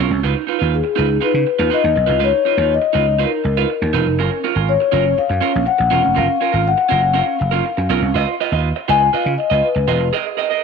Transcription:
0.00 C#4 F4
0.10 C2, muted clean electric guitar stroke
0.23 C#2 D#4 F4 B4
0.36 muted clean electric guitar stroke
0.47 D#4 F4 B4
0.59 D#2 D#4 F4 B4
0.75 G#4
0.84 muted clean electric guitar stroke
0.96 C#2 D#4 F4 B4
1.09 muted clean electric guitar stroke
1.21 D#4 F4 B4, muted slap bass stroke
1.33 C#3, muted clean electric guitar stroke
1.47 muted clean electric guitar stroke
1.59 D#2 D#4 F4 B4
1.70 D#4 F4 B4 D#5
1.83 D#2, muted clean electric guitar stroke
1.95 B1, muted clean electric guitar stroke
2.06 C2 D#4 F4 B4
2.19 C#2 D#4 F4 B4
2.24 C#5
2.33 muted clean electric guitar stroke
2.45 D#4 F4 B4
2.57 D#2 D#4 F4 B4
2.74 D#5
2.82 muted clean electric guitar stroke
2.93 C#2 D#4 F4 B4
3.06 muted clean electric guitar stroke
3.19 D#4 F4 B4
3.24 A#4
3.31 muted clean electric guitar stroke
3.44 C#2, muted clean electric guitar stroke
3.57 D#4 F4 B4
3.70 muted clean electric guitar stroke
3.82 D#2, muted clean electric guitar stroke
3.93 E1 D#4 F4 B4
4.06 F1, muted clean electric guitar stroke
4.18 F#1 C#4 F4 A#4
4.31 muted clean electric guitar stroke
4.44 C#4 F4 A#4
4.55 G#1 C#4 F4 A#4
4.69 C#5
4.80 muted clean electric guitar stroke
4.92 F#1 C#4 F4 A#4
5.05 muted clean electric guitar stroke
5.18 F5, muted clean electric guitar stroke, muted slap bass stroke
5.29 F#2, muted clean electric guitar stroke
5.41 C#4 F4 A#4
5.53 A#1, muted clean electric guitar stroke
5.66 F#5, muted clean electric guitar stroke
5.78 A#1, muted clean electric guitar stroke
5.90 E1 C#4 F4 A#4
6.03 F1, muted clean electric guitar stroke
6.15 F#1 C#4 F4 A#4 F5
6.28 muted clean electric guitar stroke
6.41 C#4 F4 A#4
6.52 G#1 C#4 F4 A#4
6.68 F#5
6.78 muted clean electric guitar stroke
6.89 F#1 C#4 F4 A#4
7.02 muted clean electric guitar stroke
7.14 C#4 F4 A#4 F5
7.26 muted clean electric guitar stroke
7.39 F#1, muted clean electric guitar stroke
7.51 C#4 F4 A#4
7.65 muted clean electric guitar stroke
7.77 F#2, muted clean electric guitar stroke
7.90 B1 C#4 F4 A#4
8.02 C2, muted clean electric guitar stroke
8.14 C#2 F4 B4 D#5
8.28 muted clean electric guitar stroke
8.40 F4 B4 D#5
8.52 D#2 F4 B4 D#5
8.76 muted clean electric guitar stroke
8.88 C#2 F4 B4 D#5 G#5
9.01 muted clean electric guitar stroke
9.13 F4 B4 D#5 F5, muted slap bass stroke
9.25 C#3, muted clean electric guitar stroke
9.38 D#5, muted clean electric guitar stroke
9.50 C#2 F4 B4 D#5
9.64 B4
9.75 C#2, muted clean electric guitar stroke
9.88 E1 F4 B4 D#5
10.00 F1, muted clean electric guitar stroke
10.13 G#4 A#4 D#5
10.26 muted clean electric guitar stroke
10.37 G#4 A#4 D#5
10.50 G#4 A#4 D#5

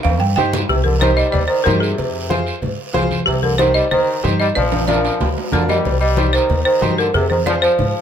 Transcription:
0.03 D#2 F5, cowbell, high conga, high timbale, long guiro
0.20 G2 G5
0.36 G2 D#4 G4 C5 G5, cowbell, low conga, short guiro
0.53 low conga, low timbale, short guiro
0.69 C2 C3 G4, cowbell, high conga, low conga, long guiro
0.84 D3 A#4, high conga
0.99 D#3 D#4 G4 C5, cowbell, high conga, short guiro
1.15 G3 D#5, short guiro
1.30 D#2 G3 D5, cowbell, high conga, low conga, long guiro
1.48 D#3 C5
1.63 G2 D#3 D#4 G4 A#4 C5, cowbell, high conga, low conga, low timbale, short guiro
1.80 C3 G#4, short guiro
1.98 F2, cowbell, high conga, low conga, long guiro
2.30 F4 G#4 C5, cowbell, high conga, short guiro
2.47 short guiro
2.62 G#2, cowbell, high conga, low conga, long guiro
2.93 C2 F4 G#4 C5, cowbell, high conga, low conga, low timbale, short guiro
3.11 high conga, short guiro
3.26 C2 C3 G4, cowbell, high conga, long guiro
3.42 D3 A#4, high conga
3.58 D#3 D#4 G4 C5, cowbell, high conga, short guiro
3.74 G3 D#5, short guiro
3.91 D#2 D#3 C5, cowbell, high conga, low conga, long guiro
4.23 G2 D#4 G4 C5, cowbell, high conga, low conga, short guiro
4.40 G3 D#5, short guiro
4.55 A#1 F3 D5, cowbell, high conga, low conga, high timbale, long guiro
4.72 high conga, high timbale
4.88 F3 D4 F4 A#4 D5, cowbell, high conga, high timbale, short guiro
5.05 high timbale, short guiro
5.20 D2, cowbell, high conga, low conga, low timbale, long guiro
5.38 low timbale
5.52 F2 D3 D4 F4 A#4, cowbell, high conga, low conga, low timbale, short guiro
5.68 G3 D#5, high conga, low timbale, short guiro
5.85 C2, cowbell, high conga, low conga, long guiro
6.00 G3 D#5
6.17 D#4 G4 C5, cowbell, high conga, short guiro
6.33 D#3 C5, short guiro
6.49 D#2, cowbell, high conga, low conga, long guiro
6.65 D#3 C5
6.81 G2 D#4 G4 C5, cowbell, high conga, low conga, low timbale, short guiro
6.98 D3 A#4, short guiro
7.14 F2 C3 G#4, cowbell, high conga, low conga, long guiro
7.30 D#3 C5, high conga
7.46 F3 F4 G#4 C5 D5, cowbell, high conga, short guiro
7.62 F3 C5, short guiro
7.79 G#2, cowbell, high conga, low conga, long guiro

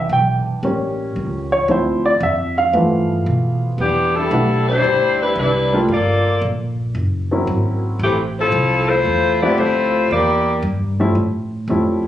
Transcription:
Already playing: E3 B3 D4 E5
0.09 B1 G5
0.46 muted upright bass stroke
0.63 A1 G3 A#3 C#4
1.16 C#2
1.52 C#5
1.68 D2 F3 C4 E4 C5
2.06 D5
2.20 F2 E5
2.58 F5
2.73 G2 E3 F3 A3 B3
3.26 B2
3.78 E2 E3 B3 D4 G4
4.16 G3 D4 E4 A4
4.31 B1 G3 A3 B3 D4 E4
4.69 G3 D4 E4 C5
4.84 D2
5.22 G3 D4 E4 B4
5.36 C2
5.40 G3 D4 E4 B4
5.73 G3 A3 A#3 D4 F4
5.88 G1 A#3 F4 A4
5.93 D5
6.42 A#1
6.95 F#1
7.31 F#3 A#3 C4 C#4 E4
7.47 G#1
7.99 A1
8.04 E3 A3 C4 G4
8.39 F3 C4 E4 A4
8.52 C2
8.90 A3 E4 F4 C5
9.05 E2
9.42 F3 G3 A3 B3 C4 E4 G4 D5 E5
9.58 D2 A3 E4 F4 C5
10.11 E2 A#3 E4 G4 D5
10.62 G2
11.00 F3 G3 A3 C#4 E4
11.15 A2
11.68 F2 F3 G3 A3 C#4 E4
12.04 muted upright bass stroke

